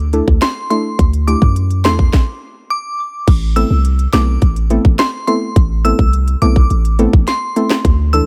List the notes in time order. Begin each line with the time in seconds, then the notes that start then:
Already playing: D2
0.13 A3 D4 E4 A4, closed hi-hat
0.28 D2, kick
0.42 C6, cross-stick, snare, closed hi-hat
0.70 A3 D4 E4 A4 C6, closed hi-hat
0.99 D2, kick, closed hi-hat
1.13 closed hi-hat
1.27 A3 D4 E4 G4 D6, closed hi-hat
1.42 F#2, kick
1.56 closed hi-hat
1.71 closed hi-hat
1.85 E2 A3 D4 E4 A4 C6, cross-stick, snare, closed hi-hat
1.99 kick
2.13 kick, snare
2.70 D6
3.28 A1, kick, closed hi-hat, crash
3.56 A3 B3 C4 E4 A4 E6, closed hi-hat
3.70 C2
3.85 closed hi-hat
3.99 closed hi-hat
4.13 B1 A3 B3 C4 E4 A4 D6, cross-stick, snare, closed hi-hat
4.42 A1, kick, closed hi-hat
4.56 closed hi-hat
4.70 A3 B3 C4 E4 A4, closed hi-hat
4.85 A1, kick
4.99 C6, cross-stick, snare, closed hi-hat
5.27 A3 B3 C4 E4 A4 C6, closed hi-hat
5.56 A1, kick, closed hi-hat
5.85 A3 B3 C4 E4 A4 E6, closed hi-hat
5.99 C2, kick
6.13 closed hi-hat
6.28 closed hi-hat
6.42 B1 A3 B3 C4 E4 A4 D6, closed hi-hat
6.56 kick
6.70 A1, closed hi-hat
6.85 closed hi-hat
6.99 A3 B3 C4 E4 A4, closed hi-hat
7.13 A1, kick
7.27 C6, snare, closed hi-hat
7.56 A3 B3 C4 E4 A4, closed hi-hat
7.70 cross-stick, snare
7.85 D2, kick, closed hi-hat
8.13 E3 A3 D4 E4 A4 E6, closed hi-hat